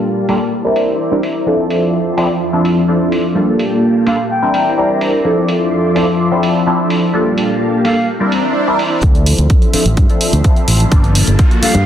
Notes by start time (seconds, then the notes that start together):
Already playing: G3 A#3 D4 F4 G4 A4 F5 A5
0.06 tambourine
0.17 tambourine
0.28 G3 A#3 D4 F4 A4, open hi-hat
0.52 E4 C5 D5 A#5
0.65 G3 C4 D4 E4 A#4, tambourine
0.76 open hi-hat
1.00 tambourine
1.11 G3 C4 D4 E4 A#4, tambourine
1.23 open hi-hat
1.46 F3 C4 D4 E4 A4 D5 E5 C6, tambourine
1.59 tambourine
1.70 open hi-hat
2.07 tambourine
2.17 F3 C4 D4 E4 A4, open hi-hat
2.41 tambourine
2.53 F3 C4 D4 E4 A4, tambourine
2.65 open hi-hat
2.78 tambourine
2.88 F3 C4 D4 E4 A4, tambourine
3.01 tambourine
3.12 open hi-hat
3.25 tambourine
3.35 G3 A#3 D4 F4 G4 A4 F5 A5, tambourine
3.48 tambourine
3.59 open hi-hat
3.72 tambourine
3.84 tambourine
3.96 tambourine
4.06 G3 A#3 D4 F4 A4 F5, open hi-hat
4.19 tambourine
4.30 E4 C5 D5 G5 A#5, tambourine
4.42 G3 C4 D4 E4 A#4, tambourine
4.54 open hi-hat
4.67 tambourine
4.77 G3 C4 D4 E4 A#4, tambourine
4.90 tambourine
5.01 open hi-hat
5.14 tambourine
5.24 F3 C4 D4 E4 A4 E5 C6
5.38 tambourine
5.49 open hi-hat
5.61 tambourine
5.72 tambourine
5.85 tambourine
5.95 F3 C4 D4 E4 A4, open hi-hat
6.19 tambourine
6.31 F3 C4 D4 E4 A4, tambourine
6.43 open hi-hat
6.55 tambourine
6.66 F3 C4 D4 E4 A4, tambourine
6.80 tambourine
6.90 open hi-hat
7.02 tambourine
7.13 G3 A#3 D4 F4 G4 A4 F5 A5, tambourine
7.26 tambourine
7.38 open hi-hat
7.49 tambourine
7.60 tambourine
7.73 tambourine
7.84 G3 A#3 D4 F4 A4 F5, open hi-hat
7.97 tambourine
8.08 E4 C5 D5 A#5, tambourine, swell
8.20 G3 C4 D4 E4 A#4, tambourine
8.32 open hi-hat
8.45 tambourine
8.55 tambourine
8.67 G3 C4 D4 E4 A#4
8.79 open hi-hat
8.92 tambourine
9.02 D2 F3 D4 E4 A4 E5 C6, kick, closed hi-hat, riser
9.15 closed hi-hat
9.26 open hi-hat
9.38 D2, closed hi-hat
9.50 kick, closed hi-hat
9.62 closed hi-hat
9.73 F3 C4 D4 E4 A4, muted fingered electric bass stroke, open hi-hat
9.86 A1, closed hi-hat
9.97 G2, kick, closed hi-hat
10.09 F3 C4 D4 E4 A4, closed hi-hat
10.21 open hi-hat
10.33 D2, closed hi-hat
10.44 F3 C4 D4 E4 A4, kick, closed hi-hat
10.56 closed hi-hat
10.68 A1, open hi-hat
10.80 closed hi-hat
10.91 G1 G3 A#3 D4 F4 A4 A5, kick, closed hi-hat
11.04 closed hi-hat
11.15 open hi-hat
11.27 G1, closed hi-hat
11.39 kick, closed hi-hat
11.51 closed hi-hat
11.62 G3 A#3 D4 F4 A4 F5, muted fingered electric bass stroke, open hi-hat
11.75 G2, closed hi-hat